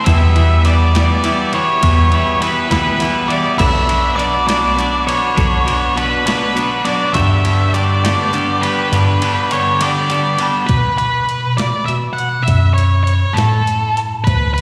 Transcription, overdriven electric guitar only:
0.06 E3 G3 B3 E4
0.34 E3 G3 B3 E4
0.66 E3 G3 B3 E4
0.94 E3 G3 B3 E4
1.23 E3 G3 B3 E4
1.52 E3 G3 B3 E4
1.81 E3 G3 B3 E4
2.11 E3 G3 B3 E4
2.40 E3 G3 B3 E4
2.69 E3 G3 B3 E4
2.99 E3 G3 B3 E4
3.27 E3 G3 B3 E4
3.58 B2 F#3 B3 D4
3.86 B2 F#3 B3 D4
4.16 B2 F#3 B3 D4
4.45 B2 F#3 B3 D4
4.75 B2 F#3 B3 D4
5.06 B2 F#3 B3 D4
5.36 B2 F#3 B3 D4
5.66 B2 F#3 B3 D4
5.95 B2 F#3 B3 D4
6.25 B2 F#3 B3 D4
6.54 B2 F#3 B3 D4
6.83 B2 F#3 B3 D4
7.14 G2 D3 G3 B3 D4
7.43 G2 D3 G3 B3 D4
7.74 G2 D3 G3 B3 D4
8.04 G2 D3 G3 B3 D4
8.33 G2 D3 G3 B3 D4
8.62 G2 D3 G3 B3 D4
8.92 G2 D3 G3 B3 D4
9.21 G2 D3 G3 B3 D4
9.51 G2 D3 G3 B3 D4
9.80 G2 D3 G3 B3 D4
10.09 G2 D3 G3 B3 D4
10.38 G2 D3 G3 B3 D4

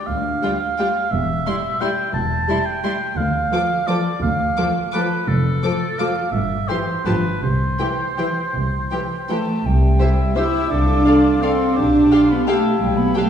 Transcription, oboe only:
0.07 F5
0.60 F5
1.11 E5
1.81 G5
2.14 A5
2.66 G5
3.17 F5
3.87 D5
4.22 F5
4.94 B4
5.28 A4
5.99 F5
6.32 E5
6.68 C5
7.06 B4
7.43 C5
10.00 E4
10.36 G4
10.71 A4
11.05 F4
11.42 A4
11.77 G4
12.12 F4
12.48 E4
13.17 D4

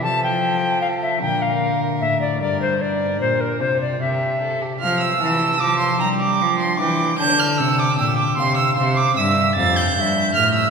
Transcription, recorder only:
0.03 A5
0.23 G5
0.81 F5
1.02 E5
1.21 G5
1.42 F5
2.01 E5
2.21 D5
2.41 D5
2.61 C5
2.81 D5
3.20 C5
3.40 A#4
3.60 C5
3.81 D5
4.01 E5
4.82 F5
5.20 A5
6.00 G5
6.81 G5
7.20 A5
7.99 G5
8.39 F5
9.18 E5
9.56 F5
9.96 F5
10.00 E5

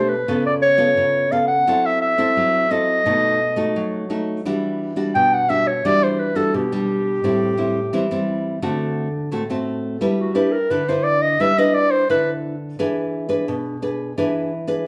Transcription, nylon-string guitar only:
Already playing: B2 A3 D4 G4
0.28 C#3 B3 F4 A4
0.78 B3 F4 A4
0.97 C#3
1.32 B3 F4 A4
1.67 F#3 C4 E4 A4
2.18 C4 E4 A4
2.37 F#3
2.71 C4 E4 A4
3.06 B2 A3 D#4 F#4
3.56 A3 D#4 F#4
3.76 F#3
4.10 A3 D#4 F#4
4.45 E3 G3 D4 F#4
4.96 G3 D4 F#4
5.15 B2
5.49 G3 D4 F#4
5.85 E3 G3 D4 F#4
6.35 G3 D4 F#4
6.54 B2
6.72 G3 D4
7.24 A2 G3 C4 E4
7.58 G3 C4 E4
7.93 E3 G3 C4 E4
8.11 G3 C4 E4
8.62 D3 A3 C4 F#4
9.31 A2 A3 C4 F#4
9.50 A3 C4 F#4
10.01 G3 D4 E4 B4
10.35 D4 E4 B4
10.70 D3 D4 E4 B4
10.89 D4 E4 B4
11.40 G3 D4 E4 B4
11.58 D4 E4 B4
12.10 D3 D4 E4 B4
12.79 E3 D4 G#4 B4
13.29 D4 G#4 B4
13.48 B2
13.82 D4 G#4 B4
14.18 E3 D4 G#4 B4
14.67 D4 G#4 B4

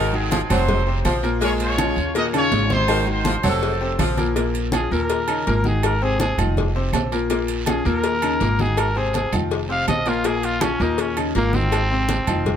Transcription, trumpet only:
4.74 G#4
4.94 A#4
5.67 G#4
5.85 A#4
6.03 G#4
6.21 G#4
7.69 G#4
7.88 A#4
8.61 G#4
8.79 A#4
8.97 G#4
9.16 G#4
9.71 F5
9.89 D#5
10.08 F4
10.26 G#4
10.45 F4
10.62 C#4
10.82 D#4
11.00 C#4
11.37 A#3
11.55 C4

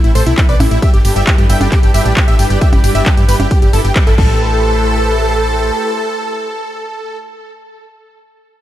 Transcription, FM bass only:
0.04 A1
0.15 A1
0.26 B1
0.49 B1
0.60 A1
0.71 A1
0.94 G1
1.05 G1
1.16 G1
1.38 G2
1.50 G1
1.61 G1
1.83 G1
1.94 G1
2.06 A1
2.28 A1
2.39 G1
2.50 G1
2.73 G1
2.84 G1
2.95 G1
3.17 G2
3.29 G1
3.40 G1
3.62 G1
3.73 G1
3.85 G1
4.07 G1
4.18 A1

